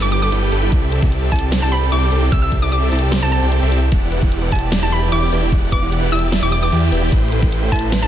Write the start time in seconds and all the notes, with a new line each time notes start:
0.02 G1 G3 E4 G4 A4 B4 G5 D6
0.12 G4 D6, closed hi-hat
0.22 A4 D6
0.32 G1 G3 E4 G4 A4 B4 G5, closed hi-hat
0.42 G4
0.52 G1 G3 G4 A4 B4 G5, closed hi-hat
0.62 E4
0.72 C2 C4 E4 G4 A4 D5 E5, kick, closed hi-hat
0.82 G4
0.92 A4, closed hi-hat
1.02 C2 C4 E4 G4 A4 D5 E5, kick
1.12 G4, closed hi-hat
1.22 A4
1.32 C2 C4 E4 G4 A4 D5 A5, kick, closed hi-hat
1.36 closed hi-hat
1.39 G5, closed hi-hat
1.52 C5, snare, closed hi-hat
1.62 C2 C4 E4 G4 A4 D5 G5 A5
1.72 G4 B5, closed hi-hat
1.82 A4
1.92 C2 C4 E4 G4 A4 D5 G5 D6, closed hi-hat
2.02 G4
2.12 C2 C4 G4 A4 D5 G5, closed hi-hat
2.22 E4
2.32 C2 C4 G4 A4 D5 E5 E6, kick, closed hi-hat
2.42 G4 E6
2.52 A4, kick, closed hi-hat
2.62 C2 C4 E4 G4 A4 D5 E5 D6
2.72 G4 D6, closed hi-hat
2.82 A4
2.92 C2 C4 E4 G4 A4 D5 A5, closed hi-hat
2.95 closed hi-hat
2.99 G5, closed hi-hat
3.12 C5, snare, closed hi-hat
3.22 C2 C4 E4 G4 A4 D5 G5 A5
3.32 G5 A5, closed hi-hat
3.42 C2 C4 G4 A4 D5 G5
3.52 C5, closed hi-hat
3.62 C2 C4 G4 A4 C5 D5 E5
3.72 E4, closed hi-hat
3.82 E4
3.92 E1 E3 E4 G4 D5 F#5, kick, closed hi-hat, ride
4.02 G4
4.12 B4, closed hi-hat
4.22 E1 E3 E4 G4 D5 F#5, kick
4.32 G4, closed hi-hat
4.42 B4
4.52 E1 E3 E4 G4 D5 A5, kick, closed hi-hat
4.55 closed hi-hat
4.59 G5, closed hi-hat
4.72 D5, snare, closed hi-hat, ride
4.82 E1 E3 E4 G4 D5 G5 A5
4.92 G4 B5, closed hi-hat
5.03 B4
5.12 E1 E3 E4 G4 D5 G5 D6, closed hi-hat
5.22 G4
5.32 E1 E3 E4 G4 B4 D5 G5, closed hi-hat
5.42 E4
5.52 E1 E3 E4 G4 D5 F#5, kick, closed hi-hat, ride
5.63 G4
5.72 B4 D6, kick, closed hi-hat
5.82 E1 E3 E4 G4 D5 F#5
5.92 G4, closed hi-hat
6.02 B4
6.12 E1 E3 E4 G4 D5 A5 E6, closed hi-hat
6.16 closed hi-hat
6.19 G5, closed hi-hat
6.32 D5, snare, closed hi-hat, ride
6.42 E1 E3 E4 G4 D5 G5 D6
6.52 G4 D6, closed hi-hat
6.62 B4 D6
6.72 E2 E3 E4 G4 D5 G5, closed hi-hat
6.82 G4
6.92 E1 E3 E4 G4 B4 D5 G5, closed hi-hat
7.02 E4
7.12 A1 A3 E4 B4 C5 G5, kick, closed hi-hat, ride
7.22 G4
7.32 A4, closed hi-hat
7.42 A1 A3 E4 B4 C5 G5, kick
7.52 G4, closed hi-hat
7.62 A4
7.72 A1 A3 E4 B4 C5 A5 B5, kick, closed hi-hat
7.76 closed hi-hat
7.79 E5, closed hi-hat
7.92 B4, snare, closed hi-hat, ride
8.02 A1 A3 E4 B4 C5 A5